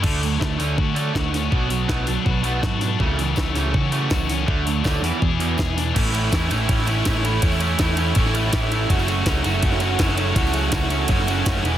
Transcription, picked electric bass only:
X:1
M:4/4
L:1/16
Q:1/4=163
K:A
V:1 name="Picked electric bass" clef=bass
D,,4 D,,2 D,,2 D,4 D,,4 | B,,,4 B,,,2 B,,, z B,,,4 G,,4 | C,,4 C,,2 C,,2 C,4 C,,4 | D,,4 D,,2 E,, z E,,4 E,,4 |
A,,,4 E,,2 A,,,2 A,,,4 A,,,4 | E,,4 E,,4 A,,,4 A,,,4 | F,,,4 C,,2 F,,,2 F,,,4 F,,,4 | C,,4 C,,4 F,,,4 F,,,2 E,,,2 |]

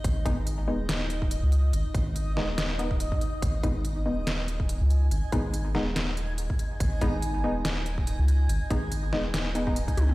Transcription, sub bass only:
X:1
M:4/4
L:1/16
Q:"Swing 16ths" 1/4=142
K:G#m
V:1 name="Sub bass" clef=bass
G,,, z G,,,4 D,,,6- D,,, C,,3 | G,,, z G,,,4 D,,,6- D,,, z3 | G,,, z G,,,4 D,,,6- D,,, C,,3 | G,,, z G,,,4 D,,,6- D,,, z3 |
G,,, z G,,,4 D,,,6- D,,, C,,3 | G,,, z G,,,4 D,,,6- D,,, z C,,2 |]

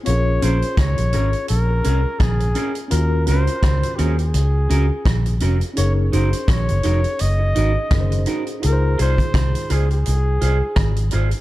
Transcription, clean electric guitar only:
X:1
M:4/4
L:1/8
Q:"Swing 16ths" 1/4=84
K:Db
V:1 name="Clean electric guitar"
z [DAB] z [DAB] z [DAB] z [DAB] | z [DGB] z [DGB] z [DGB] z [DGB] | z [EGB] z [EGB] z [EGB] z [EGB] | z [FAc] z [FAc] z [FAc] z [FAc] |]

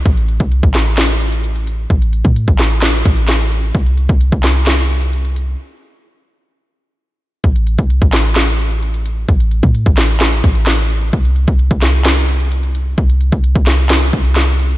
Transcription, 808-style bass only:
X:1
M:4/4
L:1/16
Q:1/4=130
K:Am
V:1 name="808-style bass" clef=bass
A,,,3 C,,2 A,,,8- A,,,3 | A,,,3 A,,2 A,,,4- A,,, A,,,6 | C,,3 C,,2 C,,8- C,,3 | z16 |
A,,,3 C,,2 A,,,8- A,,,3 | A,,,3 A,,2 A,,,4- A,,, A,,,6 | C,,3 C,,2 C,,8- C,,3 | C,,3 C,,2 C,,4- C,, C,,6 |]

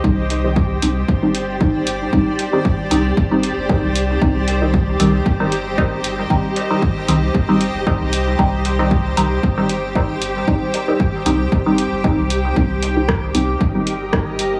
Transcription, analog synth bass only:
X:1
M:4/4
L:1/16
Q:"Swing 16ths" 1/4=115
K:Cm
V:1 name="Analog synth bass" clef=bass
C,,6 C,, z G,,,8 | z6 C,, z G,,,3 G,,, z C,,3 | C,,6 C,, z G,,,8 | z6 C,, z G,,,3 G,,, z C,,3 |
C,,6 C,, z G,,,8 | z6 C,, z G,,,3 G,,, z C,,3 | C,,6 C,, z G,,,8 |]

